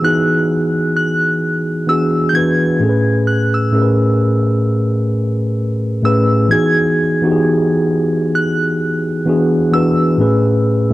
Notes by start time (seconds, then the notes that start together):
Already playing: E3 B3 D#4 F#4 G#4
0.02 E3 B3 D#4 F#4 G#4 F#6
0.97 F#6
1.87 E3 B3 D4 F#4 G#4 E6
2.29 E3 G6
2.34 B3 D4 F#4 B4 G#6
2.79 A2 A3 C#4 G#4 A4
2.89 B4
3.27 F#6
3.54 E6
3.71 A2 A3 C#4 G#4 A#4
3.81 B4
6.02 A2 A3 C#4 G#4 B4 E6
6.48 E3 B3 D#4 F#4 G#4 G#6
7.21 E3 B3 D#4 F#4 G4
7.32 G#4
8.35 F#6
9.25 E3 B3 D4 F#4 G#4
9.71 E3 B3 D4 F#4 B4 E6
10.17 A2 A3 C#4 G#4 B4
10.90 A2